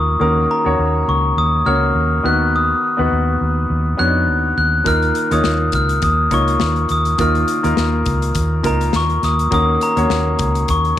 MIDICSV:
0, 0, Header, 1, 5, 480
1, 0, Start_track
1, 0, Key_signature, -6, "minor"
1, 0, Tempo, 582524
1, 168, Time_signature, 4, 2, 24, 8
1, 9057, End_track
2, 0, Start_track
2, 0, Title_t, "Glockenspiel"
2, 0, Program_c, 0, 9
2, 0, Note_on_c, 0, 87, 70
2, 164, Note_off_c, 0, 87, 0
2, 174, Note_on_c, 0, 87, 70
2, 394, Note_off_c, 0, 87, 0
2, 419, Note_on_c, 0, 82, 79
2, 897, Note_on_c, 0, 85, 76
2, 908, Note_off_c, 0, 82, 0
2, 1116, Note_off_c, 0, 85, 0
2, 1139, Note_on_c, 0, 87, 81
2, 1372, Note_on_c, 0, 89, 88
2, 1380, Note_off_c, 0, 87, 0
2, 1860, Note_on_c, 0, 90, 78
2, 1864, Note_off_c, 0, 89, 0
2, 2101, Note_off_c, 0, 90, 0
2, 2107, Note_on_c, 0, 87, 80
2, 3024, Note_off_c, 0, 87, 0
2, 3289, Note_on_c, 0, 90, 80
2, 3762, Note_off_c, 0, 90, 0
2, 3772, Note_on_c, 0, 90, 73
2, 3879, Note_off_c, 0, 90, 0
2, 4017, Note_on_c, 0, 89, 85
2, 4360, Note_off_c, 0, 89, 0
2, 4387, Note_on_c, 0, 87, 67
2, 4706, Note_off_c, 0, 87, 0
2, 4741, Note_on_c, 0, 89, 80
2, 4975, Note_on_c, 0, 87, 80
2, 4981, Note_off_c, 0, 89, 0
2, 5195, Note_off_c, 0, 87, 0
2, 5223, Note_on_c, 0, 85, 81
2, 5699, Note_on_c, 0, 87, 69
2, 5709, Note_off_c, 0, 85, 0
2, 5804, Note_off_c, 0, 87, 0
2, 5941, Note_on_c, 0, 89, 73
2, 7140, Note_on_c, 0, 82, 76
2, 7170, Note_off_c, 0, 89, 0
2, 7357, Note_off_c, 0, 82, 0
2, 7385, Note_on_c, 0, 85, 80
2, 7616, Note_on_c, 0, 87, 70
2, 7623, Note_off_c, 0, 85, 0
2, 7852, Note_off_c, 0, 87, 0
2, 7862, Note_on_c, 0, 87, 78
2, 8078, Note_off_c, 0, 87, 0
2, 8098, Note_on_c, 0, 82, 74
2, 8820, Note_on_c, 0, 85, 78
2, 8834, Note_off_c, 0, 82, 0
2, 9057, Note_off_c, 0, 85, 0
2, 9057, End_track
3, 0, Start_track
3, 0, Title_t, "Grand piano"
3, 0, Program_c, 1, 0
3, 0, Control_c, 1, 64, 127
3, 0, Note_on_c, 1, 58, 60
3, 0, Note_on_c, 1, 63, 56
3, 0, Note_on_c, 1, 65, 55
3, 0, Note_on_c, 1, 70, 66
3, 159, Note_off_c, 1, 58, 0
3, 159, Note_on_c, 1, 58, 64
3, 164, Note_on_c, 1, 51, 57
3, 164, Note_on_c, 1, 61, 50
3, 166, Note_on_c, 1, 66, 49
3, 173, Note_off_c, 1, 70, 0
3, 173, Note_on_c, 1, 70, 71
3, 179, Control_c, 1, 64, 0
3, 180, Note_off_c, 1, 65, 0
3, 185, Note_off_c, 1, 63, 0
3, 313, Control_c, 1, 64, 127
3, 462, Note_off_c, 1, 58, 0
3, 464, Note_off_c, 1, 61, 0
3, 466, Note_off_c, 1, 66, 0
3, 469, Note_off_c, 1, 70, 0
3, 532, Note_on_c, 1, 58, 64
3, 538, Note_on_c, 1, 61, 59
3, 541, Note_on_c, 1, 66, 65
3, 546, Note_on_c, 1, 73, 80
3, 853, Note_off_c, 1, 51, 0
3, 1214, Note_off_c, 1, 58, 0
3, 1218, Note_off_c, 1, 61, 0
3, 1219, Note_off_c, 1, 66, 0
3, 1221, Note_off_c, 1, 73, 0
3, 1366, Note_on_c, 1, 58, 64
3, 1372, Note_on_c, 1, 61, 56
3, 1374, Note_on_c, 1, 66, 56
3, 1380, Note_on_c, 1, 73, 72
3, 1841, Note_on_c, 1, 59, 60
3, 1842, Note_off_c, 1, 66, 0
3, 1847, Note_off_c, 1, 58, 0
3, 1847, Note_on_c, 1, 63, 56
3, 1850, Note_off_c, 1, 61, 0
3, 1850, Note_on_c, 1, 51, 52
3, 1853, Note_on_c, 1, 71, 63
3, 1854, Note_off_c, 1, 73, 0
3, 1854, Note_on_c, 1, 66, 57
3, 1859, Control_c, 1, 64, 0
3, 2014, Control_c, 1, 64, 127
3, 2332, Note_off_c, 1, 59, 0
3, 2335, Note_off_c, 1, 63, 0
3, 2338, Note_off_c, 1, 71, 0
3, 2339, Note_off_c, 1, 66, 0
3, 2448, Note_on_c, 1, 59, 66
3, 2453, Note_on_c, 1, 63, 57
3, 2458, Note_on_c, 1, 66, 61
3, 2465, Note_on_c, 1, 71, 72
3, 2536, Note_off_c, 1, 51, 0
3, 3132, Note_off_c, 1, 59, 0
3, 3135, Note_off_c, 1, 63, 0
3, 3137, Note_off_c, 1, 66, 0
3, 3141, Note_off_c, 1, 71, 0
3, 3274, Note_on_c, 1, 59, 60
3, 3281, Note_on_c, 1, 62, 44
3, 3282, Note_on_c, 1, 66, 56
3, 3291, Note_on_c, 1, 73, 67
3, 3336, Note_on_c, 1, 63, 57
3, 3344, Note_off_c, 1, 62, 0
3, 3878, Note_off_c, 1, 59, 0
3, 3882, Note_off_c, 1, 66, 0
3, 3886, Note_off_c, 1, 73, 0
3, 3909, Note_off_c, 1, 63, 0
3, 3990, Note_on_c, 1, 58, 59
3, 3999, Note_on_c, 1, 51, 48
3, 3999, Note_on_c, 1, 63, 54
3, 4000, Note_on_c, 1, 65, 51
3, 4009, Note_on_c, 1, 70, 68
3, 4019, Control_c, 1, 64, 0
3, 4173, Control_c, 1, 64, 127
3, 4297, Note_off_c, 1, 58, 0
3, 4302, Note_off_c, 1, 63, 0
3, 4302, Note_off_c, 1, 65, 0
3, 4307, Note_off_c, 1, 70, 0
3, 4373, Note_on_c, 1, 58, 64
3, 4378, Note_on_c, 1, 63, 63
3, 4380, Note_on_c, 1, 65, 55
3, 4387, Note_on_c, 1, 73, 70
3, 4690, Note_off_c, 1, 51, 0
3, 5055, Note_off_c, 1, 58, 0
3, 5057, Note_off_c, 1, 63, 0
3, 5058, Note_off_c, 1, 65, 0
3, 5062, Note_off_c, 1, 73, 0
3, 5197, Note_on_c, 1, 58, 66
3, 5202, Note_on_c, 1, 63, 60
3, 5206, Note_on_c, 1, 65, 57
3, 5211, Note_on_c, 1, 73, 70
3, 5799, Note_off_c, 1, 58, 0
3, 5801, Note_off_c, 1, 63, 0
3, 5804, Note_off_c, 1, 65, 0
3, 5806, Note_off_c, 1, 73, 0
3, 5917, Note_on_c, 1, 58, 57
3, 5921, Note_on_c, 1, 63, 58
3, 5923, Note_on_c, 1, 51, 50
3, 5927, Note_on_c, 1, 65, 59
3, 5930, Note_on_c, 1, 70, 66
3, 6221, Note_off_c, 1, 58, 0
3, 6223, Note_off_c, 1, 63, 0
3, 6226, Note_off_c, 1, 65, 0
3, 6227, Note_off_c, 1, 70, 0
3, 6288, Note_on_c, 1, 58, 67
3, 6290, Note_on_c, 1, 63, 58
3, 6294, Note_on_c, 1, 65, 59
3, 6298, Note_on_c, 1, 70, 73
3, 6612, Note_off_c, 1, 51, 0
3, 6972, Note_off_c, 1, 58, 0
3, 6973, Note_off_c, 1, 63, 0
3, 6975, Note_off_c, 1, 65, 0
3, 6977, Note_off_c, 1, 70, 0
3, 7113, Note_on_c, 1, 58, 67
3, 7117, Note_on_c, 1, 63, 60
3, 7120, Note_on_c, 1, 65, 58
3, 7125, Note_on_c, 1, 70, 75
3, 7717, Note_off_c, 1, 58, 0
3, 7719, Note_off_c, 1, 63, 0
3, 7720, Note_off_c, 1, 65, 0
3, 7723, Note_off_c, 1, 70, 0
3, 7833, Note_on_c, 1, 58, 66
3, 7837, Note_on_c, 1, 61, 55
3, 7839, Note_on_c, 1, 51, 55
3, 7841, Note_on_c, 1, 66, 56
3, 7847, Note_on_c, 1, 70, 67
3, 7859, Control_c, 1, 64, 0
3, 7996, Control_c, 1, 64, 127
3, 8138, Note_off_c, 1, 58, 0
3, 8140, Note_off_c, 1, 61, 0
3, 8142, Note_off_c, 1, 66, 0
3, 8145, Note_off_c, 1, 70, 0
3, 8210, Note_on_c, 1, 58, 70
3, 8216, Note_on_c, 1, 61, 63
3, 8223, Note_on_c, 1, 66, 60
3, 8225, Note_on_c, 1, 73, 75
3, 8530, Note_off_c, 1, 51, 0
3, 8893, Note_off_c, 1, 58, 0
3, 8896, Note_off_c, 1, 61, 0
3, 8899, Note_off_c, 1, 66, 0
3, 8900, Note_off_c, 1, 73, 0
3, 9057, End_track
4, 0, Start_track
4, 0, Title_t, "Fingered electric bass"
4, 0, Program_c, 2, 33
4, 0, Note_on_c, 2, 39, 82
4, 126, Note_off_c, 2, 39, 0
4, 169, Note_on_c, 2, 39, 85
4, 366, Note_off_c, 2, 39, 0
4, 543, Note_on_c, 2, 39, 69
4, 629, Note_off_c, 2, 39, 0
4, 649, Note_on_c, 2, 39, 68
4, 845, Note_off_c, 2, 39, 0
4, 890, Note_on_c, 2, 37, 72
4, 1086, Note_off_c, 2, 37, 0
4, 1127, Note_on_c, 2, 39, 89
4, 1324, Note_off_c, 2, 39, 0
4, 1368, Note_on_c, 2, 37, 74
4, 1565, Note_off_c, 2, 37, 0
4, 1606, Note_on_c, 2, 39, 88
4, 1804, Note_off_c, 2, 39, 0
4, 1847, Note_on_c, 2, 39, 74
4, 2241, Note_off_c, 2, 39, 0
4, 2465, Note_on_c, 2, 39, 69
4, 2550, Note_off_c, 2, 39, 0
4, 2571, Note_on_c, 2, 39, 77
4, 2766, Note_off_c, 2, 39, 0
4, 2811, Note_on_c, 2, 39, 70
4, 3006, Note_off_c, 2, 39, 0
4, 3048, Note_on_c, 2, 39, 92
4, 3245, Note_off_c, 2, 39, 0
4, 3292, Note_on_c, 2, 41, 67
4, 3532, Note_off_c, 2, 41, 0
4, 3532, Note_on_c, 2, 39, 82
4, 3727, Note_off_c, 2, 39, 0
4, 3770, Note_on_c, 2, 39, 71
4, 3966, Note_off_c, 2, 39, 0
4, 4006, Note_on_c, 2, 39, 70
4, 4203, Note_off_c, 2, 39, 0
4, 4380, Note_on_c, 2, 39, 74
4, 4467, Note_off_c, 2, 39, 0
4, 4491, Note_on_c, 2, 39, 73
4, 4686, Note_off_c, 2, 39, 0
4, 4722, Note_on_c, 2, 37, 75
4, 4921, Note_off_c, 2, 37, 0
4, 4965, Note_on_c, 2, 39, 83
4, 5163, Note_off_c, 2, 39, 0
4, 5199, Note_on_c, 2, 37, 69
4, 5399, Note_off_c, 2, 37, 0
4, 5447, Note_on_c, 2, 39, 86
4, 5644, Note_off_c, 2, 39, 0
4, 5688, Note_on_c, 2, 39, 77
4, 5885, Note_off_c, 2, 39, 0
4, 5924, Note_on_c, 2, 39, 75
4, 6122, Note_off_c, 2, 39, 0
4, 6298, Note_on_c, 2, 39, 74
4, 6386, Note_off_c, 2, 39, 0
4, 6407, Note_on_c, 2, 39, 76
4, 6604, Note_off_c, 2, 39, 0
4, 6646, Note_on_c, 2, 37, 68
4, 6843, Note_off_c, 2, 37, 0
4, 6885, Note_on_c, 2, 39, 85
4, 7083, Note_off_c, 2, 39, 0
4, 7121, Note_on_c, 2, 37, 74
4, 7320, Note_off_c, 2, 37, 0
4, 7363, Note_on_c, 2, 39, 85
4, 7562, Note_off_c, 2, 39, 0
4, 7605, Note_on_c, 2, 39, 83
4, 7803, Note_off_c, 2, 39, 0
4, 7845, Note_on_c, 2, 39, 80
4, 8042, Note_off_c, 2, 39, 0
4, 8216, Note_on_c, 2, 39, 76
4, 8304, Note_off_c, 2, 39, 0
4, 8324, Note_on_c, 2, 39, 80
4, 8522, Note_off_c, 2, 39, 0
4, 8564, Note_on_c, 2, 37, 78
4, 8762, Note_off_c, 2, 37, 0
4, 8804, Note_on_c, 2, 39, 90
4, 9002, Note_off_c, 2, 39, 0
4, 9057, End_track
5, 0, Start_track
5, 0, Title_t, "Drums"
5, 4005, Note_on_c, 9, 42, 66
5, 4006, Note_on_c, 9, 36, 79
5, 4087, Note_off_c, 9, 42, 0
5, 4088, Note_off_c, 9, 36, 0
5, 4140, Note_on_c, 9, 42, 29
5, 4222, Note_off_c, 9, 42, 0
5, 4244, Note_on_c, 9, 42, 54
5, 4326, Note_off_c, 9, 42, 0
5, 4378, Note_on_c, 9, 42, 44
5, 4461, Note_off_c, 9, 42, 0
5, 4481, Note_on_c, 9, 38, 85
5, 4564, Note_off_c, 9, 38, 0
5, 4715, Note_on_c, 9, 42, 80
5, 4724, Note_on_c, 9, 36, 86
5, 4797, Note_off_c, 9, 42, 0
5, 4806, Note_off_c, 9, 36, 0
5, 4855, Note_on_c, 9, 42, 49
5, 4937, Note_off_c, 9, 42, 0
5, 4959, Note_on_c, 9, 42, 83
5, 4965, Note_on_c, 9, 36, 86
5, 5041, Note_off_c, 9, 42, 0
5, 5048, Note_off_c, 9, 36, 0
5, 5201, Note_on_c, 9, 36, 69
5, 5201, Note_on_c, 9, 42, 64
5, 5283, Note_off_c, 9, 36, 0
5, 5283, Note_off_c, 9, 42, 0
5, 5337, Note_on_c, 9, 42, 41
5, 5419, Note_off_c, 9, 42, 0
5, 5436, Note_on_c, 9, 38, 85
5, 5519, Note_off_c, 9, 38, 0
5, 5570, Note_on_c, 9, 42, 28
5, 5653, Note_off_c, 9, 42, 0
5, 5677, Note_on_c, 9, 42, 51
5, 5759, Note_off_c, 9, 42, 0
5, 5812, Note_on_c, 9, 42, 41
5, 5894, Note_off_c, 9, 42, 0
5, 5919, Note_on_c, 9, 42, 68
5, 5923, Note_on_c, 9, 36, 82
5, 6001, Note_off_c, 9, 42, 0
5, 6006, Note_off_c, 9, 36, 0
5, 6057, Note_on_c, 9, 42, 29
5, 6140, Note_off_c, 9, 42, 0
5, 6162, Note_on_c, 9, 42, 57
5, 6244, Note_off_c, 9, 42, 0
5, 6297, Note_on_c, 9, 42, 42
5, 6380, Note_off_c, 9, 42, 0
5, 6403, Note_on_c, 9, 38, 87
5, 6485, Note_off_c, 9, 38, 0
5, 6638, Note_on_c, 9, 42, 75
5, 6644, Note_on_c, 9, 36, 80
5, 6720, Note_off_c, 9, 42, 0
5, 6727, Note_off_c, 9, 36, 0
5, 6775, Note_on_c, 9, 42, 51
5, 6857, Note_off_c, 9, 42, 0
5, 6877, Note_on_c, 9, 42, 81
5, 6884, Note_on_c, 9, 36, 78
5, 6960, Note_off_c, 9, 42, 0
5, 6967, Note_off_c, 9, 36, 0
5, 7121, Note_on_c, 9, 36, 69
5, 7122, Note_on_c, 9, 42, 61
5, 7203, Note_off_c, 9, 36, 0
5, 7204, Note_off_c, 9, 42, 0
5, 7259, Note_on_c, 9, 42, 46
5, 7341, Note_off_c, 9, 42, 0
5, 7359, Note_on_c, 9, 38, 85
5, 7441, Note_off_c, 9, 38, 0
5, 7494, Note_on_c, 9, 42, 28
5, 7577, Note_off_c, 9, 42, 0
5, 7605, Note_on_c, 9, 42, 48
5, 7606, Note_on_c, 9, 38, 29
5, 7688, Note_off_c, 9, 38, 0
5, 7688, Note_off_c, 9, 42, 0
5, 7739, Note_on_c, 9, 42, 43
5, 7821, Note_off_c, 9, 42, 0
5, 7843, Note_on_c, 9, 42, 63
5, 7845, Note_on_c, 9, 36, 88
5, 7925, Note_off_c, 9, 42, 0
5, 7927, Note_off_c, 9, 36, 0
5, 8086, Note_on_c, 9, 42, 56
5, 8168, Note_off_c, 9, 42, 0
5, 8215, Note_on_c, 9, 42, 43
5, 8298, Note_off_c, 9, 42, 0
5, 8324, Note_on_c, 9, 38, 92
5, 8406, Note_off_c, 9, 38, 0
5, 8560, Note_on_c, 9, 42, 74
5, 8565, Note_on_c, 9, 36, 91
5, 8642, Note_off_c, 9, 42, 0
5, 8648, Note_off_c, 9, 36, 0
5, 8696, Note_on_c, 9, 42, 50
5, 8779, Note_off_c, 9, 42, 0
5, 8802, Note_on_c, 9, 42, 78
5, 8807, Note_on_c, 9, 36, 80
5, 8885, Note_off_c, 9, 42, 0
5, 8889, Note_off_c, 9, 36, 0
5, 8938, Note_on_c, 9, 42, 29
5, 9021, Note_off_c, 9, 42, 0
5, 9057, End_track
0, 0, End_of_file